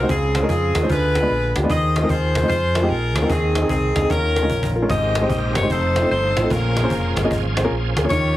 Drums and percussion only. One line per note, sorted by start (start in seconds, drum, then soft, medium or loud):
0.09 cajon bass loud
0.35 cajon slap loud
0.49 cajon bass medium
0.75 cajon bass medium
0.75 cajon slap loud
0.89 cajon bass loud
1.15 cajon slap loud
1.29 cajon slap soft
1.56 cajon slap loud
1.70 cajon bass loud
1.96 cajon slap loud
2.09 cajon bass loud
2.35 cajon bass medium
2.35 cajon slap loud
2.50 cajon bass loud
2.75 cajon slap loud
2.89 cajon slap soft
3.16 cajon slap loud
3.30 cajon bass loud
3.55 cajon slap loud
3.69 cajon bass loud
3.96 cajon bass medium
3.96 cajon slap loud
4.10 cajon bass loud
4.10 cajon slap medium
4.36 cajon slap medium
4.50 cajon bass medium
4.63 cajon bass loud
4.76 cajon slap soft
4.90 cajon bass loud
5.15 cajon slap loud
5.30 cajon bass medium
5.55 cajon bass medium
5.55 cajon slap loud
5.70 cajon bass loud
5.96 cajon slap loud
6.10 cajon slap soft
6.37 cajon slap loud
6.50 cajon bass loud
6.77 cajon slap loud
6.90 cajon bass loud
7.17 cajon bass medium
7.17 cajon slap loud
7.31 cajon bass loud
7.57 cajon slap loud
7.97 cajon slap loud
8.10 cajon bass loud